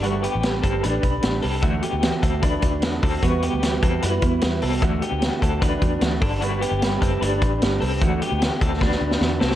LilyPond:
<<
  \new Staff \with { instrumentName = "Clean electric guitar" } { \time 4/4 \key d \mixolydian \tempo 4 = 151 <a fis'>8 <b g'>4 <c' a'>8 <d' b'>4. <c' a'>8 | <a fis'>8 <b g'>4 <c' a'>8 <d' b'>4. <c' a'>8 | <b fis'>8 <b g'>4 <c' a'>8 <e' b'>4. <c' a'>8 | <a fis'>8 <b g'>4 <c' a'>8 <d' b'>4. <d' a'>8 |
<a fis'>8 <b g'>4 <c' a'>8 <d' b'>4. <c' a'>8 | <a fis'>8 <b g'>4 <c' a'>8 <d' b'>4. <c' a'>8 | }
  \new Staff \with { instrumentName = "Steel-string acoustic guitar" } { \time 4/4 \key d \mixolydian <g a d' g' b'>8 <d' g' b'>8 <g a d' g' b'>4 <a d' g' b'>8 <d' g' b'>8 <g a d' g' b'>8 <d' g' b'>8 | <d e a d' fis'>8 <a d' fis'>8 <d e a d' fis'>4 <e a d' fis'>8 <a d' fis'>8 <d e a d' fis'>8 <a d' fis'>8 | <e g b fis'>8 <g b fis'>8 <e g b fis'>4 <e g b fis'>8 <g b fis'>8 <e g b fis'>8 <g b fis'>8 | <d e a d' fis'>8 <a d' fis'>8 <d e a d' fis'>4 <e a d' fis'>8 <a d' fis'>8 <d e a d' fis'>8 <d' g' b'>8 |
<g a d' g' b'>8 <d' g' b'>8 <g a d' g' b'>4 <a d' g' b'>8 <d' g' b'>8 <g a d' g' b'>8 <d' g' b'>8 | <d e a d' fis'>8 <a d' fis'>8 <d e a d' fis'>4 <e a d' fis'>8 <a d' fis'>8 <d e a d' fis'>8 <a d' fis'>8 | }
  \new Staff \with { instrumentName = "Fingered electric bass" } { \clef bass \time 4/4 \key d \mixolydian g,,8. a,,8. g,,8 a,,8 b,,8 a,,8 c,8 | d,8 r16 d,8 r16 d,4 d,8 e,8 d,8 | e,8. d,8. e,8 fis,8 e,8 e,8 c,8 | d,8 r16 d,8 r16 d,4 e,8 d,8 g,,8~ |
g,,8. g,,8. fis,,8 g,,8 a,,8 g,,8 c,8 | d,8 r16 d,8 r16 d,4 d,8 e,8 c,8 | }
  \new DrumStaff \with { instrumentName = "Drums" } \drummode { \time 4/4 hh8 hh8 <hh sn>8 <hh bd>8 hh8 <hh bd>8 <hh sn>8 hho8 | <hh bd>8 hh8 <hh sn>8 <hh bd>8 <hh bd>8 <hh bd>8 <hh sn>8 <hho bd>8 | <hh bd>8 hh8 <hh sn>8 <hh bd>8 hh8 <hh bd>8 <hh sn>8 hho8 | <hh bd>8 hh8 <hh sn>8 <hh bd>8 <hh bd>8 <hh bd>8 <hh sn>8 <hho bd>8 |
hh8 hh8 <hh sn>8 <hh bd>8 hh8 <hh bd>8 <hh sn>8 hho8 | <hh bd>8 hh8 <hh sn>8 <hh bd>8 <bd sn>16 sn8 sn16 sn8 sn16 sn16 | }
>>